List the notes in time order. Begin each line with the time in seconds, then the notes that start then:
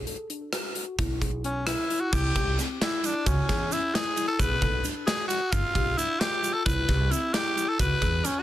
0.07 A4, closed hi-hat
0.30 D4, closed hi-hat
0.53 F#4, cross-stick, closed hi-hat
0.75 F#4, closed hi-hat
0.98 B1 E4, kick, closed hi-hat
1.21 G#4, kick, closed hi-hat
1.44 C#4, closed hi-hat
1.66 E4, cross-stick, closed hi-hat
1.90 E4, closed hi-hat
2.00 F#4
2.12 C2 E4 G4, kick, crash, shaker
2.35 C2 G4, kick, ride, shaker
2.59 C4, snare, ride, shaker
2.81 E4, snare, ride
3.04 D4 E4, ride, shaker
3.26 C#2 C#4 F#4, kick, ride, shaker
3.49 E2 G#4, kick, snare, ride, shaker
3.71 C#4 E4, ride, shaker
3.94 E4 G#4, snare, ride
4.17 E4, ride, shaker
4.27 A4
4.39 B1 G#4 B4, kick, ride, shaker
4.61 B1 A4, kick, ride, shaker
4.84 D4, ride, shaker
5.06 F#4 G#4, snare, ride
5.28 F#4, ride, shaker
5.51 G1 F4, kick, ride, shaker
5.75 B1 G4, kick, ride
5.98 D4 E4, ride, shaker
6.20 F4 G4, snare, ride, shaker
6.44 F4, ride, shaker
6.53 A4
6.65 C2 B4, kick, ride, shaker
6.89 C2 G4, kick, snare, ride, shaker
7.11 C4 E4, ride, shaker
7.34 E4 G4, snare, ride
7.57 E4, ride, shaker
7.69 A4
7.79 C#2 F#4 B4, kick, ride, shaker
8.02 E2 G#4, kick, ride, shaker
8.24 C#4, ride, shaker
8.39 F#4